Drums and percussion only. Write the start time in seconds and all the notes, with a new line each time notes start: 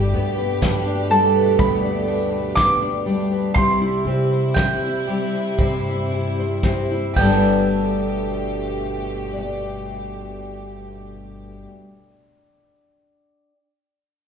0.62 kick, snare
1.59 kick
2.57 kick, snare
3.56 kick
4.56 kick, snare
5.59 kick
6.63 kick, snare
7.16 kick, crash